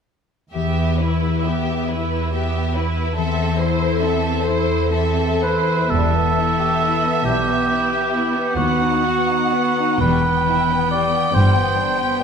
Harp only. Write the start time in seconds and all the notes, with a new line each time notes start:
0.54 E3
0.77 B3
1.00 E4
1.24 G4
1.46 B4
1.69 G4
1.91 B4
2.12 G4
2.35 B4
2.57 G4
2.77 E4
2.97 B3
3.18 E3
3.38 C4
3.61 E4
3.82 A4
4.02 C5
4.25 A4
4.46 C5
4.69 A4
4.93 C5
5.17 A4
5.43 E4
5.68 C4
5.91 E3
6.36 E4
6.81 B4
7.25 E4
7.68 B4
8.12 E4
8.57 D#3
9.03 B3
9.53 F#4 B4
10.00 E3
10.46 E4
10.87 E4 B4
11.32 G2
11.74 G3
12.17 B4